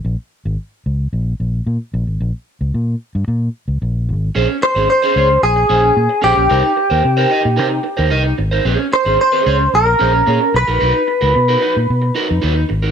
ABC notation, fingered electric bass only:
X:1
M:4/4
L:1/16
Q:1/4=111
K:Bbdor
V:1 name="Fingered electric bass" clef=bass
B,,, z2 A,,, z2 D,,2 B,,,2 B,,,2 B,, z B,,, A,,, | B,,, z2 D,, B,,2 z G,, B,,2 z D,, B,,,2 A,,,2 | B,,, z2 A,,, z2 D,,2 B,,,2 B,,,2 B,, z B,,, B,,, | C,, z2 E,, C,2 z B,, C,2 z E,, C,,2 A,,,2 |
B,,, z2 A,,, z2 D,,2 B,,,2 B,,,2 B,, z =B,,, ^A,,, | =B,,, z2 D,, =B,,2 z ^A,, B,,2 z F,, ^D,,2 _A,,,2 |]